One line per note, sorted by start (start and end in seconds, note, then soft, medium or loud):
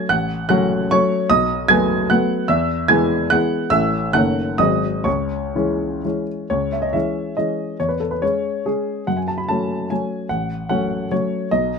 0.09 0.48 A1 medium
0.09 0.47 F#5 medium
0.09 0.47 F#6 medium
0.49 0.86 F#3 medium
0.49 0.86 A3 medium
0.49 0.86 C#4 medium
0.49 0.88 F#5 medium
0.49 0.90 F#6 medium
0.91 1.26 F#3 medium
0.91 1.26 A3 medium
0.91 1.26 C#4 medium
0.91 1.27 C#5 medium
0.91 1.29 C#6 loud
1.30 1.68 B1 medium
1.30 1.66 D#5 medium
1.30 1.69 D#6 loud
1.68 2.06 F#3 medium
1.68 2.06 A3 medium
1.68 2.06 B3 medium
1.68 2.07 G#5 medium
1.68 2.09 G#6 loud
2.10 2.45 F#3 medium
2.10 2.45 A3 medium
2.10 2.46 B3 medium
2.10 2.46 F#5 medium
2.10 2.48 F#6 medium
2.48 2.88 E2 medium
2.48 2.87 E5 medium
2.48 2.89 E6 medium
2.88 3.27 E3 medium
2.88 3.27 G#3 medium
2.88 3.27 B3 medium
2.88 3.28 G#5 medium
2.88 3.31 G#6 loud
3.30 3.68 E3 medium
3.30 3.68 G#3 medium
3.30 3.68 B3 medium
3.30 3.69 F#5 medium
3.30 3.71 F#6 loud
3.70 4.12 A1 medium
3.70 4.09 E3 medium
3.70 4.10 A3 soft
3.70 4.10 C#4 soft
3.70 4.11 E5 medium
3.70 4.13 E6 loud
4.13 4.58 F#1 medium
4.13 4.56 D#3 soft
4.13 4.56 A3 soft
4.13 4.56 C#4 soft
4.13 4.57 F#5 medium
4.13 4.60 F#6 loud
4.58 5.05 G#1 medium
4.58 5.02 F#3 soft
4.58 5.02 G#3 soft
4.58 5.03 C4 soft
4.58 5.03 D#5 medium
4.58 5.06 D#6 medium
5.04 5.54 C#2 medium
5.04 6.23 C#5 medium
5.04 6.27 C#6 medium
5.55 6.00 E3 medium
5.55 6.01 G#3 medium
5.55 6.01 C#4 medium
6.05 6.47 E3 soft
6.05 6.47 G#3 soft
6.05 6.47 C#4 soft
6.50 6.93 C#2 soft
6.50 6.72 C#5 medium
6.72 6.83 E5 medium
6.82 6.94 D#5 medium
6.93 7.34 E3 soft
6.93 7.34 G#3 soft
6.93 7.34 C#4 medium
6.93 7.37 E5 medium
7.37 7.76 E3 soft
7.37 7.76 G#3 soft
7.37 7.76 C#4 soft
7.37 7.79 D#5 medium
7.80 8.21 E2 soft
7.80 7.90 C#5 medium
7.89 8.00 B4 medium
8.00 8.11 A4 soft
8.11 8.22 B4 medium
8.22 8.63 G#3 soft
8.22 8.63 C#4 soft
8.22 8.66 C#5 medium
8.66 9.03 G#3 soft
8.66 9.04 C#4 soft
8.66 9.07 G#4 medium
9.07 9.48 F#2 soft
9.07 9.17 F#5 medium
9.17 9.27 G#5 medium
9.28 9.38 A5 medium
9.38 9.49 B5 medium
9.49 9.87 F#3 soft
9.49 9.88 A3 soft
9.49 9.88 C#4 soft
9.49 9.91 A5 medium
9.90 10.27 F#3 soft
9.90 10.27 A3 soft
9.90 10.27 C#4 soft
9.90 10.30 G#5 medium
10.29 10.69 A1 soft
10.29 10.68 F#5 medium
10.69 11.08 F#3 soft
10.69 11.08 A3 soft
10.69 11.08 C#4 medium
10.69 11.11 F#5 medium
11.11 11.48 F#3 soft
11.11 11.48 A3 soft
11.11 11.48 C#4 soft
11.11 11.52 C#5 medium
11.51 11.79 B1 medium
11.51 11.79 D#5 medium